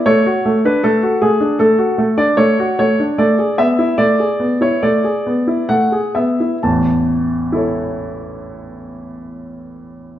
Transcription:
<<
  \new Staff \with { instrumentName = "Grand piano" } { \time 4/4 \key a \major \tempo 4 = 70 << { cis''8. b'16 a'8 gis'8 a'8. d''16 cis''8 cis''8 | d''8 e''8 d''8. cis''16 d''4 fis''8 e''8 | a''1 | } \\ { r1 | r1 | r4 <e' a' cis''>2. | } >> }
  \new Staff \with { instrumentName = "Grand piano" } { \time 4/4 \key a \major a16 fis'16 a16 d'16 a16 fis'16 a16 d'16 a16 fis'16 a16 d'16 a16 fis'16 a16 d'16 | a16 gis'16 b16 e'16 a16 gis'16 b16 e'16 a16 gis'16 b16 e'16 a16 gis'16 b16 e'16 | <a,, e,>1 | }
>>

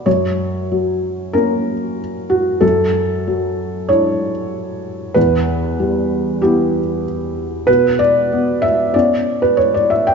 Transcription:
<<
  \new Staff \with { instrumentName = "Felt piano" } { \time 4/4 \key b \minor \tempo 4 = 95 cis''2 ais'4 r8 fis'8 | a'2 cis''2 | b'2 g'4 r4 | b'8 d''4 e''8 d''8. b'16 cis''16 d''16 e''16 g''16 | }
  \new Staff \with { instrumentName = "Felt piano" } { \time 4/4 \key b \minor fis,4 fis4 <ais cis'>2 | fis,4 fis4 <d' e'>2 | e,4 g4 <b e'>2 | b,4 b4 <b cis'>2 | }
>>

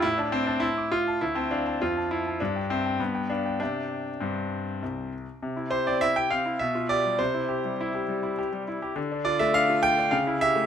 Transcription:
\new Staff \with { instrumentName = "Grand piano" } { \time 3/4 \key c \major \tempo 4 = 102 << { e'16 d'16 c'16 d'16 e'8 f'8 e'16 c'16 d'8 | f'8 e'8 d'8 c'8 b8 d'8 | d'4 c'4. r8 | r8 c''16 d''16 e''16 g''16 f''8 e''8 d''8 |
c''2~ c''8 r8 | r8 d''16 e''16 f''8 g''8 f''8 e''8 | } \\ { a,16 a''16 g''16 a''16 c'''16 d'''16 c'''16 a''16 d,16 a''16 f''16 a''16 | f,16 a''16 f''16 a''16 g,16 g''16 e''16 g''16 g,16 g''16 f''16 g''16 | <c e'' g''>4 g,4 c,4 | c16 e'16 g'16 c'16 e'16 g'16 c'16 e'16 b,16 f'16 g'16 g16 |
c16 e'16 g'16 g16 e'16 g'16 g16 e'16 g'16 g16 e'16 g'16 | d16 d'16 f'16 a16 d'16 f'16 a16 d'16 cis16 e'16 g'16 a16 | } >> }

